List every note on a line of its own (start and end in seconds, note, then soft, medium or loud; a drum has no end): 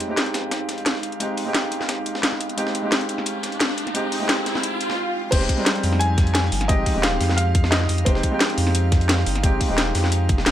0.00 0.08 G#3 medium
0.00 4.94 G#3 medium
0.00 0.09 C4 medium
0.00 0.10 D#4 medium
0.00 4.94 D#4 medium
0.00 0.11 G4 medium
0.00 4.94 F5 medium
0.00 closed hi-hat medium
0.00 riser medium
0.08 1.18 G#3 medium
0.08 1.18 C4 medium
0.08 1.19 D#4 medium
0.08 1.19 G4 loud
0.17 snare loud
0.17 closed hi-hat medium
0.26 closed hi-hat soft
0.34 1.02 F2 medium
0.34 snare loud
0.34 closed hi-hat medium
0.51 snare loud
0.51 closed hi-hat medium
0.51 closed hi-hat loud
0.69 snare soft
0.69 closed hi-hat medium
0.78 closed hi-hat soft
0.86 snare loud
0.86 closed hi-hat medium
0.86 closed hi-hat loud
0.95 snare soft
1.03 1.36 G1 medium
1.03 closed hi-hat medium
1.12 closed hi-hat soft
1.20 1.43 G#3 medium
1.20 1.44 C4 medium
1.20 1.45 D#4 medium
1.20 1.45 G4 medium
1.20 closed hi-hat medium
1.37 closed hi-hat medium
1.37 open hi-hat medium
1.45 1.71 D#1 medium
1.45 2.55 G#3 medium
1.45 2.55 C4 medium
1.45 2.56 D#4 medium
1.45 2.57 G4 loud
1.54 snare loud
1.54 closed hi-hat medium
1.72 2.39 F2 medium
1.72 closed hi-hat medium
1.81 snare soft
1.89 snare loud
1.89 closed hi-hat medium
1.89 closed hi-hat loud
2.06 closed hi-hat medium
2.15 snare medium
2.23 snare loud
2.23 closed hi-hat medium
2.32 snare soft
2.41 closed hi-hat medium
2.49 closed hi-hat soft
2.57 2.73 F1 loud
2.57 2.81 G#3 medium
2.57 2.82 C4 medium
2.57 2.82 D#4 medium
2.57 2.82 G4 loud
2.57 closed hi-hat medium
2.67 snare soft
2.75 closed hi-hat medium
2.82 3.92 G#3 medium
2.82 3.93 C4 medium
2.82 3.93 D#4 medium
2.82 3.94 G4 loud
2.92 snare loud
2.92 closed hi-hat medium
3.01 closed hi-hat soft
3.09 3.76 F2 medium
3.09 closed hi-hat medium
3.18 snare soft
3.26 closed hi-hat medium
3.43 snare soft
3.43 closed hi-hat medium
3.52 closed hi-hat soft
3.60 snare loud
3.60 closed hi-hat medium
3.69 snare medium
3.78 4.11 G1 medium
3.78 closed hi-hat medium
3.87 snare soft
3.87 closed hi-hat soft
3.94 4.18 G#3 medium
3.94 4.19 C4 medium
3.94 4.19 D#4 medium
3.94 4.19 G4 loud
3.94 closed hi-hat medium
4.12 closed hi-hat medium
4.12 open hi-hat medium
4.19 4.45 D#1 loud
4.19 4.97 G#3 medium
4.19 4.98 C4 medium
4.19 4.98 D#4 medium
4.19 4.99 G4 loud
4.29 snare loud
4.29 closed hi-hat medium
4.46 4.98 F2 medium
4.46 snare medium
4.46 closed hi-hat medium
4.55 snare soft
4.63 closed hi-hat medium
4.63 swell medium
4.81 closed hi-hat medium
4.90 snare medium
4.90 snare soft
5.31 5.48 F1 loud
5.31 10.51 F3 medium
5.31 5.55 G#3 medium
5.31 5.56 C4 medium
5.31 10.51 D#4 medium
5.31 5.56 D#4 medium
5.31 5.57 G4 medium
5.31 5.96 C5 loud
5.31 10.51 F5 medium
5.31 kick loud
5.31 closed hi-hat medium
5.31 closed hi-hat loud
5.31 crash loud
5.41 snare medium
5.49 kick medium
5.49 closed hi-hat medium
5.57 6.68 G3 loud
5.57 6.66 G#3 medium
5.57 6.67 C4 medium
5.57 6.68 D#4 medium
5.66 snare loud
5.66 closed hi-hat loud
5.66 closed hi-hat medium
5.75 closed hi-hat soft
5.83 6.51 F2 medium
5.83 closed hi-hat medium
5.83 open hi-hat medium
5.92 snare soft
5.99 6.32 G#5 loud
5.99 closed hi-hat medium
6.18 kick loud
6.18 snare soft
6.18 closed hi-hat medium
6.27 closed hi-hat soft
6.34 6.70 G#5 loud
6.34 snare loud
6.34 closed hi-hat loud
6.34 closed hi-hat medium
6.44 snare medium
6.52 6.85 G1 medium
6.52 closed hi-hat medium
6.52 open hi-hat medium
6.61 snare soft
6.61 closed hi-hat soft
6.68 6.93 G#3 medium
6.68 6.93 C4 medium
6.68 6.93 D#4 medium
6.68 6.94 G4 loud
6.68 7.04 D#5 loud
6.68 kick loud
6.68 closed hi-hat loud
6.68 closed hi-hat medium
6.86 kick medium
6.86 closed hi-hat medium
6.86 open hi-hat medium
6.94 7.19 D#1 medium
6.94 8.04 G#3 medium
6.94 8.04 C4 medium
6.94 8.05 D#4 medium
6.94 8.05 G4 loud
7.02 7.35 F5 loud
7.02 snare loud
7.02 closed hi-hat medium
7.02 closed hi-hat loud
7.21 7.88 F2 loud
7.21 snare medium
7.21 closed hi-hat medium
7.21 open hi-hat medium
7.30 snare soft
7.37 7.73 F5 loud
7.37 closed hi-hat medium
7.37 closed hi-hat loud
7.55 kick loud
7.55 closed hi-hat medium
7.64 snare medium
7.64 snare soft
7.71 8.03 D#5 medium
7.71 snare loud
7.71 closed hi-hat medium
7.81 snare soft
7.89 8.05 F2 medium
7.89 closed hi-hat medium
7.89 open hi-hat medium
7.98 closed hi-hat soft
8.05 8.22 F1 loud
8.05 8.29 G#3 medium
8.05 8.30 C4 medium
8.05 8.30 D#4 medium
8.05 8.31 G4 loud
8.05 8.70 C5 medium
8.05 kick loud
8.05 closed hi-hat medium
8.15 snare medium
8.23 kick medium
8.23 closed hi-hat medium
8.31 9.41 G#3 medium
8.31 9.41 C4 medium
8.31 9.42 D#4 medium
8.31 9.42 G4 loud
8.41 snare loud
8.41 closed hi-hat medium
8.50 closed hi-hat soft
8.58 9.25 F2 loud
8.58 closed hi-hat medium
8.58 open hi-hat medium
8.67 snare soft
8.75 closed hi-hat medium
8.92 kick loud
8.92 snare soft
8.92 closed hi-hat medium
9.01 closed hi-hat soft
9.09 snare loud
9.09 closed hi-hat medium
9.18 snare medium
9.26 9.59 G1 medium
9.26 closed hi-hat medium
9.26 open hi-hat medium
9.35 snare soft
9.35 closed hi-hat soft
9.43 9.67 G#3 medium
9.43 9.67 C4 medium
9.43 9.68 D#4 medium
9.43 9.68 G4 loud
9.43 kick loud
9.43 closed hi-hat medium
9.61 kick medium
9.61 closed hi-hat medium
9.61 open hi-hat medium
9.68 9.94 D#1 medium
9.68 10.51 G#3 medium
9.68 10.51 C4 medium
9.68 10.51 D#4 medium
9.68 10.51 G4 loud
9.78 snare loud
9.78 closed hi-hat medium
9.95 10.31 F2 medium
9.95 snare medium
9.95 closed hi-hat medium
9.95 open hi-hat medium
10.04 snare soft
10.12 closed hi-hat medium
10.29 10.45 D#1 loud
10.29 kick loud
10.29 closed hi-hat medium
10.38 snare medium
10.38 snare soft
10.46 10.51 D#1 loud
10.46 snare loud
10.46 closed hi-hat medium